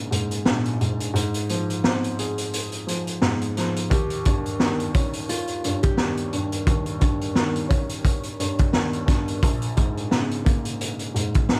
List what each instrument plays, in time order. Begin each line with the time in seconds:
Already playing: upright piano A#1 G#2 C#3 A#3
0.11 upright piano G#2, closed hi-hat
0.31 closed hi-hat
0.45 upright piano A#1, snare
0.65 closed hi-hat
0.81 upright piano G#2, closed hi-hat
1.00 closed hi-hat
1.14 upright piano G#2, closed hi-hat
1.34 closed hi-hat
1.49 upright piano F3, closed hi-hat
1.70 closed hi-hat
1.84 upright piano C4, snare
2.04 closed hi-hat
2.19 upright piano G#4, closed hi-hat
2.38 closed hi-hat
2.53 closed hi-hat
2.72 closed hi-hat
2.87 upright piano F3, closed hi-hat
3.07 closed hi-hat
3.22 upright piano G#2, snare
3.41 closed hi-hat
3.57 upright piano F3, snare, closed hi-hat
3.76 closed hi-hat
3.90 upright piano D#2, nylon-string guitar G4, kick, closed hi-hat
4.10 closed hi-hat
4.25 upright piano G2, kick, closed hi-hat
4.46 closed hi-hat
4.60 upright piano D#3, snare
4.80 closed hi-hat
4.94 upright piano C#4, kick, closed hi-hat
5.13 closed hi-hat
5.29 nylon-string guitar F4, closed hi-hat
5.47 closed hi-hat
5.64 upright piano G2, closed hi-hat
5.83 nylon-string guitar G4, kick, closed hi-hat
5.97 upright piano D#2, snare
6.17 closed hi-hat
6.33 upright piano G2, closed hi-hat
6.52 closed hi-hat
6.67 upright piano D#2, kick, closed hi-hat
6.86 closed hi-hat
6.99 upright piano G2, kick, closed hi-hat
7.21 closed hi-hat
7.35 upright piano D#3, snare
7.55 closed hi-hat
7.69 upright piano C#4, kick, closed hi-hat
7.89 closed hi-hat
8.05 kick, closed hi-hat
8.23 closed hi-hat
8.40 upright piano G2, closed hi-hat
8.58 kick, closed hi-hat
8.73 upright piano D#2, snare
8.93 closed hi-hat
9.06 upright piano G2, kick, snare, closed hi-hat
9.28 closed hi-hat
9.43 upright piano A#1, kick, closed hi-hat
9.62 closed hi-hat
9.77 upright piano G#2, kick, closed hi-hat
9.97 closed hi-hat
10.11 upright piano C#3, snare
10.31 closed hi-hat
10.45 upright piano A#3, kick, closed hi-hat
10.65 closed hi-hat
10.81 closed hi-hat
10.99 closed hi-hat
11.14 upright piano G#2, closed hi-hat
11.34 kick, closed hi-hat
11.49 upright piano A#1, snare